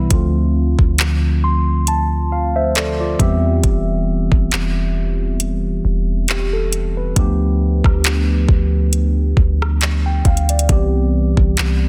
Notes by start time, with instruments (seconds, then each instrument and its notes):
Already playing: tine electric piano C3 E3 G3 B3 E4
0.10 808-style bass D2, tine electric piano D3 F3 A3 C4 F4, kick, closed hi-hat
0.79 808-style bass D2, kick
0.98 clap, closed hi-hat
1.44 tine electric piano C6
1.87 tine electric piano A5, closed hi-hat
2.32 tine electric piano F5
2.56 tine electric piano C5 E5
2.75 tine electric piano A4 D5, clap, closed hi-hat
3.00 tine electric piano F4 D5
3.19 808-style bass E2, tine electric piano E3 G3 B3 C4 G4 E5, kick, closed hi-hat
3.64 808-style bass E1, kick, closed hi-hat
4.32 808-style bass E1, kick
4.51 808-style bass E1, clap, closed hi-hat
5.40 closed hi-hat
5.85 808-style bass E1
6.28 tine electric piano G4, clap, closed hi-hat
6.53 tine electric piano A4
6.73 closed hi-hat
6.97 tine electric piano B4
7.16 808-style bass D2, tine electric piano F3 A3 B3 D4 G4, kick, closed hi-hat
7.84 808-style bass D2, kick, cross-stick
8.04 clap, closed hi-hat
8.49 808-style bass D2, kick
8.93 closed hi-hat
9.37 808-style bass D2, kick
9.62 cross-stick
9.81 clap, closed hi-hat
10.06 tine electric piano G5
10.25 808-style bass D2, tine electric piano F5, kick, closed hi-hat
10.37 closed hi-hat
10.49 tine electric piano D5, closed hi-hat
10.59 closed hi-hat
10.69 808-style bass C2, tine electric piano E3 G3 B3 C4 G4, kick, closed hi-hat
11.37 808-style bass C2, kick
11.57 808-style bass C2, clap, closed hi-hat